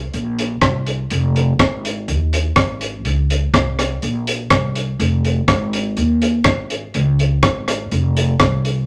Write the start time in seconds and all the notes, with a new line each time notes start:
0.14 A#1, closed hi-hat
0.39 closed hi-hat
0.61 C2, kick, cross-stick, closed hi-hat
0.86 closed hi-hat
1.10 F1, closed hi-hat
1.36 closed hi-hat
1.59 G#1, kick, cross-stick, closed hi-hat
1.85 closed hi-hat
2.08 D#2, closed hi-hat
2.33 closed hi-hat
2.56 G#1, kick, cross-stick, closed hi-hat
2.81 closed hi-hat
3.05 C#2, closed hi-hat
3.30 closed hi-hat
3.54 C2, kick, cross-stick, closed hi-hat
3.79 cross-stick, closed hi-hat
4.02 A#1, closed hi-hat
4.27 closed hi-hat
4.50 C2, kick, cross-stick, closed hi-hat
4.75 closed hi-hat
4.99 F1, closed hi-hat
5.25 closed hi-hat
5.48 G#1, kick, cross-stick, closed hi-hat
5.73 closed hi-hat
5.97 D#2, closed hi-hat
6.22 closed hi-hat
6.44 G#1, kick, cross-stick, closed hi-hat
6.70 closed hi-hat
6.94 C#2, closed hi-hat
7.19 closed hi-hat
7.43 G#1, kick, cross-stick, closed hi-hat
7.68 cross-stick, closed hi-hat
7.91 F1, closed hi-hat
8.17 closed hi-hat
8.39 kick, cross-stick, closed hi-hat
8.65 closed hi-hat